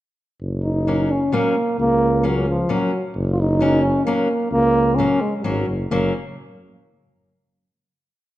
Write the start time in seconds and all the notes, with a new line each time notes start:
0.41 F#1
0.63 D#4
0.87 F#3 A#3 C#4
1.11 C#4
1.32 F#3 A#3 C#4
1.79 C#2 A#3
2.23 F#3 A#3 C#4
2.49 F3
2.69 F#3 A#3 C#4
3.16 F#1
3.32 F4
3.40 D#4
3.60 F#3 A#3 C#4
3.82 C#4
4.05 F#3 A#3 C#4
4.52 C#2 A#3
4.95 F#3 C#4
4.99 A#3 C#4
5.20 G#3
5.36 G#3
5.42 G#1 F#3 A#3 C#4
5.67 F#1
5.90 F#1 F#3 A#3 C#4